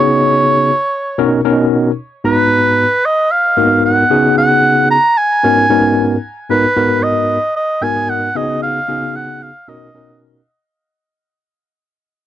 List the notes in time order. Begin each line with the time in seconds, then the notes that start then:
Already playing: C#3 B3 D#4 F#4 G#4
0.00 C#5
1.18 B2 C#4 D#4 F#4 A#4
1.45 B2 C#4 D#4 F#4 A#4
2.24 G#2 B3 D#4 F#4 B4 A#5
3.05 D#5
3.31 F5
3.57 G#2 A#3 D#4 F#4 A#4
3.63 B3
3.85 F#5
4.10 C#3 B3 D#4 F#4 G#4
4.38 F#5
4.91 A#5
5.18 G#5
5.43 G#2 B3 C#4 D#4 F#4 A#4
5.70 G#2 B3 C#4 D#4 F#4 A#4
6.50 G#2 B3 D#4 F#4 A#4 B4
6.76 G#2 B3 D#4 F#4 A#4
7.03 D#5
7.56 D#5
7.82 G#2 B3 D#4 F#4 A#4 G#5
8.09 F#5
8.35 C#3 B3 D#4 F#4 G#4 D#5
8.63 F5
8.88 C#3 B3 D#4 F#4 G#4
9.16 F#5
9.42 F5
9.68 B2 C#4 D#4 F#4 A#4 D#5
9.95 B2 C#4 D#4 F#4 A#4